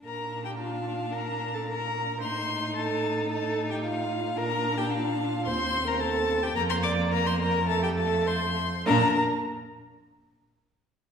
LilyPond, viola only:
\new Staff \with { instrumentName = "Viola" } { \time 4/4 \key bes \major \tempo 4 = 110 bes'8. g'16 f'4 bes'8. a'16 bes'4 | c''4 a'4 a'8. g'16 f'4 | bes'8. g'16 f'4 c''8. bes'16 a'8. g'16 | bes'16 c''16 d''8 bes'16 c''16 bes'8 a'16 g'16 a'8 c''4 |
bes'8 r2. r8 | }